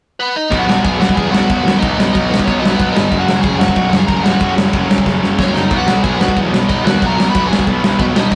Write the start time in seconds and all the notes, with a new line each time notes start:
0.20 B3 B4
0.36 D#4 D#5
0.51 B1 B2 F#3 B3, kick, crash
0.59 F#4 F#5
0.67 B1 B2 F#3 B3, snare
0.84 B1 B2 F#3 B3 G#4 G#5, kick, crash
0.99 B1 B2 F#3 B3 F#4 F#5, snare
1.09 kick
1.15 E2 B2 F#3 B3 G#4 G#5, kick, crash
1.31 B1 B2 F#3 B3 F#4 F#5, snare
1.48 B1 B2 F#3 B3, kick, crash
1.63 D#2 B2 F#3 B3
1.68 snare
1.79 B1 B2 F#3 B3 D#4 D#5
1.83 kick, crash
1.95 B1 B2 F#3 B3
2.00 snare
2.12 B1 B2 F#3 B3 D#4 D#5, kick, crash
2.29 B1 B2 F#3 B3
2.34 snare
2.39 kick
2.44 B1 B2 F#3 B3 C#4 C#5, kick
2.49 crash
2.60 B1 B2 F#3 B3 D#4 D#5
2.65 snare
2.75 B3 B4
2.79 B1 B2 F#3 B3, kick, crash
2.92 G#1 B2 F#3 B3 D#4 D#5
2.97 snare
3.10 F#1 F#2 C#3 F#3, kick, crash
3.18 F#4 F#5
3.27 F#1 F#2 C#3 F#3, snare
3.42 F#1 F#2 C#3 F#3 G#4 G#5, kick, crash
3.59 F#1 F#2 C#3 F#3 F#4 F#5, snare
3.68 kick
3.75 B1 F#2 C#3 F#3, kick, crash
3.91 F#1 F#2 C#3 F#3, snare
3.98 G#4 G#5
4.08 F#1 F#2 C#3 F#3 A#4 A#5, kick, crash
4.23 A#1 F#2 C#3 F#3 F#4 F#5, snare
4.40 F#1 F#2 C#3 F#3, kick, crash
4.56 F#1 F#2 C#3 F#3, snare
4.73 F#1 F#2 C#3 F#3, kick, crash
4.89 F#1 F#2 C#3 F#3, snare
4.98 kick
5.05 F#1 F#2 C#3 F#3, kick, snare
5.22 F#1 F#2 C#3 F#3, snare
5.38 F#1 F#2 C#3 F#3 C#4 C#5, kick, snare
5.53 F#1 F#2 C#3 F#3 D#4 D#5, snare
5.70 B1 B2 F#3 B3, kick, crash
5.77 F#4 F#5
5.87 B1 B2 F#3 B3, snare
6.04 B1 B2 F#3 B3 G#4 G#5, kick, crash
6.19 B1 B2 F#3 B3 F#4 F#5, snare
6.28 kick
6.36 E2 B2 F#3 B3, kick, crash
6.52 B1 B2 F#3 B3, snare
6.69 B1 B2 F#3 B3 D#4 D#5, kick, crash
6.84 D#2 B2 F#3 B3 F#4 F#5, snare
7.02 B1 B2 F#3 B3, kick, crash
7.07 A#4 A#5
7.17 B1 B2 F#3 B3, snare
7.29 B4 B5
7.34 B1 B2 F#3 B3, kick, crash
7.47 B1 B3 G#4 G#5
7.52 B2 F#3, snare
7.59 kick
7.67 B1 B2 F#3 B3, kick, crash
7.84 B1 B2 F#3 B3, snare
7.99 B1 B2 F#3 B3 B4, kick, crash
8.14 B1 B2 F#3 B3 D#4 D#5, snare
8.31 F#1 F#2 C#3, kick, crash